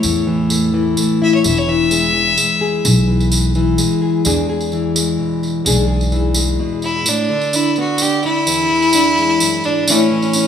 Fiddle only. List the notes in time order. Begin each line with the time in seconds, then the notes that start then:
Already playing: C#5
1.24 E5
1.34 C#5
1.47 E5
1.58 C#5
1.69 E5
6.84 E4
7.08 D4
7.55 E4
7.79 F#4
8.01 G4
8.24 E4
9.65 D4
9.89 C#4